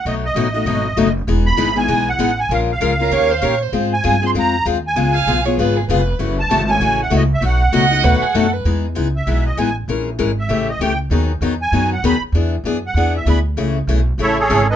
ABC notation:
X:1
M:4/4
L:1/16
Q:"Swing" 1/4=195
K:E
V:1 name="Accordion"
d2 d12 z2 | z2 b4 g4 f4 g2 | ^e2 e12 z2 | z2 g4 ^b2 ^a4 z2 g2- |
g6 z8 z2 | z2 a4 g4 f2 d2 e2 | f12- f2 z2 | z6 e4 d2 g2 z2 |
z6 e4 d2 =g2 z2 | z6 g4 f2 b2 z2 | z6 f4 e2 b2 z2 | z8 [EAce]2 [CGAc]4 [DABd]2 |]
V:2 name="Violin"
z16 | z16 | z6 ^A2 c2 =c2 ^c2 =c2- | =c z12 z3 |
z2 ^e4 c2 B2 G2 B4- | B z12 z3 | z4 d4 B2 G2 A2 B2 | z16 |
z16 | z16 | z16 | z16 |]
V:3 name="Steel-string acoustic guitar"
[B,,F,A,DF]2 z2 [B,,F,A,DF]2 [A,DF]2 [B,,F,A,DF]2 z2 [B,,F,A,DF]2 z2 | [E,G,B,DG]2 z2 [E,G,B,DG]2 [B,DG]2 [E,G,B,DG]2 z2 [E,G,B,DG]2 z2 | [^E,G,C^E^A]2 z2 [E,G,CEA]2 [CEA]2 [D,^A,C=GA]2 z2 [D,A,CGA]2 z2 | [G,^B,^EG]2 z2 [G,B,EG]2 [B,EG]2 [G,B,EG]2 z2 [G,B,EG]2 z2 |
[C,G,B,^EG]2 z2 [C,G,B,EG]2 [B,EG]2 [C,G,B,EG]2 z2 [C,G,B,EG]2 z2 | [C,E,A,CF]2 z2 [C,E,A,CF]2 [A,CF]2 [C,E,A,CF]2 z2 [C,E,A,CF]2 z2 | [B,,F,A,DF]2 z2 [B,,F,A,DF]2 [A,DF]2 [B,,F,A,DF]2 z2 [B,,F,A,DF]2 z2 | [E,G,B,DG]2 z2 [E,G,B,DG]2 z2 [E,G,B,DG]2 z2 [E,G,B,DG]2 z2 |
[E,G,CG^A]2 z2 [E,G,CGA]2 z2 [C,E,=A,C=G]2 z2 [C,E,A,CG]2 z2 | [D,F,B,DG]2 z2 [D,F,B,DG]2 z2 [D,F,B,DG]2 z2 [D,F,B,DG]2 z2 | [E,B,=DG]2 z2 [E,B,DG]2 z2 [E,B,DG]2 z2 [E,B,DG]2 z2 | [C,E,A,CG]2 z2 [C,E,A,CG]2 z2 [C,E,A,CG]2 z2 [C,E,A,CG]2 z2 |]
V:4 name="Upright bass" clef=bass
B,,,4 A,,,4 G,,,4 F,,,4 | E,,,4 G,,,4 B,,,4 A,,,4 | ^A,,,4 C,,4 D,,4 ^A,,4 | G,,4 =G,,4 ^E,,4 D,,4 |
C,,4 B,,,4 G,,,4 ^E,,,4 | F,,,4 G,,,4 A,,,4 C,,4 | B,,,4 C,,4 D,,2 z2 F,,4 | E,,4 C,,4 B,,,4 A,,,4 |
^A,,,4 G,,,4 =A,,,4 C,,4 | D,,4 E,,4 F,,4 D,,2 z2 | E,,4 F,,4 E,,4 =D,,4 | C,,4 B,,,4 A,,,4 G,,,4 |]